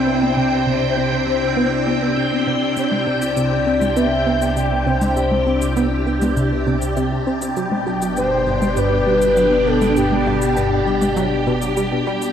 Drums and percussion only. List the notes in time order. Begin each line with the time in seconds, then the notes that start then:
2.77 cabasa
2.92 high conga
3.22 cabasa
3.37 cabasa
3.82 high conga, cabasa
3.97 cabasa
4.42 cabasa
4.57 cabasa
5.02 high conga, cabasa
5.17 cabasa
5.32 high conga
5.62 cabasa
5.77 cabasa
6.22 high conga, cabasa
6.37 cabasa
6.82 cabasa
6.97 cabasa
7.42 cabasa
7.57 cabasa
7.72 high conga
8.02 cabasa
8.17 cabasa
8.62 high conga, cabasa
8.77 cabasa
9.22 cabasa
9.37 cabasa
9.82 high conga, cabasa
9.97 cabasa
10.12 high conga
10.42 cabasa
10.57 cabasa
11.02 high conga, cabasa
11.17 cabasa
11.62 cabasa
11.77 cabasa
12.22 cabasa